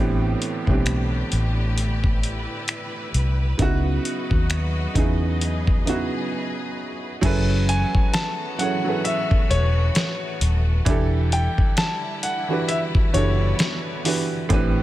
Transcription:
Already playing: A1 A2 D3 E3 B3 C4 D4 F#4 G4 B4
0.00 G4
0.42 closed hi-hat
0.66 B1 A2 E3 B3 C4 D4, kick
0.71 G4
0.86 finger snap, closed hi-hat
1.32 A1, closed hi-hat
1.77 E4, closed hi-hat
2.04 kick
2.23 closed hi-hat
2.68 finger snap, closed hi-hat
3.14 C2, closed hi-hat
3.58 C#2 C#3 F#3 B3 D#4 E4 F#4 D#5, kick, closed hi-hat
3.62 F#4
4.05 closed hi-hat
4.31 D#2, kick
4.50 finger snap, closed hi-hat
4.94 E2 C#3 B3 D#4 E4, kick, closed hi-hat
4.98 G#4
5.41 G#4, closed hi-hat
5.67 kick
5.85 C#3 B3 D#4 E4, closed hi-hat
5.89 F#4
7.21 F#1 E3 F#3 A3 B3 C#4 E4 F#4 G#4 A4, kick, closed hi-hat, crash
7.26 B4
7.69 G#5, closed hi-hat
7.95 muted fingered electric bass stroke, kick
8.13 A5, snare, closed hi-hat
8.58 F#3 C#4 E4 G#4 A4 F#5, closed hi-hat
8.62 C#5
8.84 F#3 C#4 E4 G#4 A4
8.89 B4
9.04 E5, closed hi-hat
9.31 kick
9.50 E1 C#5, closed hi-hat
9.95 snare, closed hi-hat
10.41 D#1, closed hi-hat
10.85 E1 D3 E3 G3 D4 E4 G4, kick, closed hi-hat
10.90 A4
11.32 G5, closed hi-hat
11.58 muted fingered electric bass stroke, kick
11.77 A5, snare, closed hi-hat
12.23 F#5, closed hi-hat
12.48 E3 D4 F#4 G4
12.52 B4
12.68 B3 E5, closed hi-hat
12.95 kick
13.13 F#1 E3 D4 F#4 G4 C#5, closed hi-hat
13.17 A4
13.59 snare, closed hi-hat
14.04 E3 D4 F#4 G4, open hi-hat
14.08 B4
14.49 A1 A2 E3 A3 C4 D4 G4, kick, closed hi-hat
14.53 B4

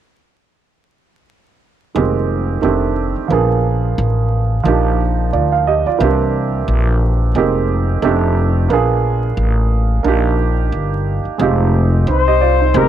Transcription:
1.95 F1 D#3 G#3 A#3 C4 G4
2.62 F1 D#3 A3 C4 D4 G4
3.16 muted upright bass stroke
3.28 A#1 F3 A#3 B3 D4
3.33 G#4
3.98 A1
4.63 A#1 F3 A#3 D4 D#4
4.68 G4
5.33 D2 F4 D5
5.52 F5
5.67 G4 D#5
5.86 F4 D5, muted upright bass stroke
5.99 C2 E3 A#3 C4
6.03 D4 G4
6.68 A#1
7.35 F1 G#3 A#3 C4 D#4 G4
8.02 F1 A3 C4 D4 D#4 G4
8.69 A#1 A#3 B3 D4 F4
8.73 G#4
9.37 A1
10.03 A#1 A#3 D4 D#4 F4
10.08 G4
10.72 G1
11.25 muted upright bass stroke
11.38 F1 G#3 C4 D#4 F4
11.43 G4
12.07 C2 D#4 C5
12.28 G4 D#5
12.41 F4 D5
12.60 D#4 C5
12.74 F1 G#3 A#3 C4 D#4 G4 A#4

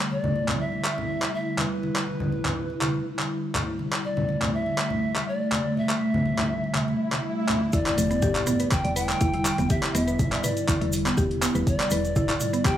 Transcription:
Already playing: D3 G3 E4
0.11 D5, muted conga
0.24 high conga, low conga
0.36 muted conga
0.48 clap, high conga, low conga
0.60 E5
0.72 muted conga
0.85 clap
0.98 muted conga, low conga
1.22 clap, muted conga
1.34 E5
1.58 B4, clap, muted conga, high conga
1.83 muted conga
1.96 clap
2.07 muted conga
2.20 high conga, low conga
2.32 muted conga
2.44 clap, high conga, low conga
2.70 muted conga
2.81 clap, high conga
2.94 muted conga
3.19 clap, muted conga
3.55 clap, muted conga, low conga
3.79 A3, muted conga
3.93 clap
4.05 D5, muted conga
4.17 high conga, low conga
4.29 muted conga
4.41 clap, high conga, low conga
4.54 E5
4.66 muted conga
4.78 clap
4.90 muted conga, low conga
5.15 clap, muted conga
5.28 D5
5.52 clap, muted conga, high conga
5.77 E5, muted conga
5.89 clap
6.01 muted conga
6.14 high conga, low conga
6.26 muted conga
6.38 clap, high conga, low conga
6.64 muted conga
6.75 clap, swell, high conga
6.88 muted conga
7.12 clap, muted conga, high conga
7.49 clap, muted conga, low conga
7.73 D3 G3 E4 D5, kick, closed hi-hat, impact, cabasa
7.86 E4, clap, closed hi-hat
7.98 E1, open hi-hat, cabasa
8.11 B3, closed hi-hat, cabasa
8.22 G4, kick, closed hi-hat, mid tom, cabasa
8.35 B1, clap, closed hi-hat
8.47 B3, mid tom, open hi-hat, cabasa
8.59 B4, closed hi-hat, cabasa
8.71 G5, kick, clap, closed hi-hat, cabasa
8.84 E1 D5, closed hi-hat
8.96 B4 G5, open hi-hat, cabasa
9.09 clap, closed hi-hat, cabasa
9.21 E1 E4, kick, closed hi-hat, cabasa
9.34 E4, closed hi-hat
9.45 clap, open hi-hat, cabasa
9.58 E1 B3, closed hi-hat, cabasa
9.70 G4 E5, kick, closed hi-hat, cabasa
9.83 clap, closed hi-hat
9.95 E1 B3 E5, open hi-hat, cabasa
10.08 B4, closed hi-hat, cabasa
10.19 kick, closed hi-hat, mid tom, cabasa
10.32 B1 D5, clap, closed hi-hat
10.44 B4 D5, mid tom, open hi-hat, cabasa
10.57 closed hi-hat, cabasa
10.68 E4, kick, clap, closed hi-hat, cabasa
10.81 E1 E4, closed hi-hat
10.93 open hi-hat, cabasa
11.06 B3, clap, closed hi-hat, cabasa
11.17 E1 G4, kick, closed hi-hat, cabasa
11.31 closed hi-hat
11.42 B3, clap, open hi-hat, cabasa
11.55 E1 B4, closed hi-hat, cabasa
11.67 D5, kick, closed hi-hat, cabasa
11.80 D5, clap, closed hi-hat
11.90 E1 B4, open hi-hat, cabasa
12.05 closed hi-hat, cabasa
12.16 E4, kick, closed hi-hat, mid tom, cabasa
12.29 B1 E4, clap, closed hi-hat
12.40 mid tom, open hi-hat, cabasa
12.53 B3, closed hi-hat, cabasa
12.65 G4 G5, kick, clap, closed hi-hat, cabasa

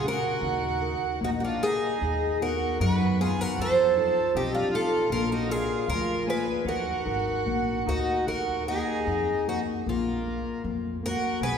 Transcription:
Already playing: C#3
0.04 C#4 A#4 F5
0.08 F#4 A#4
0.41 D#2 D#3
0.82 D#4 F#4 A#4
1.21 A#1 A#3 D#4 F#4
1.38 D#4 F#4
1.43 D4 F4
1.61 D#4 F#4 G#4 A#4
2.01 D#2 D#3
2.41 B3 D#4 F#4 A#4
2.80 F#2 D#3 F#4 A#4
2.92 B4
3.20 B3 D#4 F4 F#4 G#4
3.41 F#4 A#4
3.59 F2 F3 A4 C5
3.97 D#4 F4 A4
4.35 B1 C4 D#4 G4
4.53 D4 F4
4.72 D#4 F4 A4
5.10 A#1 A#3 F4 A#4
5.32 D#4 F#4
5.49 F4 G#4 A#4 D5
5.86 D2 F3 F4 A#4
6.26 A#3 G#4 B4 D5
6.65 D#2 D#3 F#4 A#4
7.05 G#1 D#4 F#4 A#4
7.46 A#1 A#3
7.86 D2 D#4 F#4 A#4
8.26 D#2 D#3 F#4 A#4
8.68 A#3 D#4 G#4
9.07 F2 D#4
9.47 A#3 D#4 F#4
9.86 A#1 A#3 F4
9.91 A#3
10.26 A#3
10.64 F2 A#3
11.03 A#3 A#4
11.07 F#4
11.41 B1 B3 G#4 B4

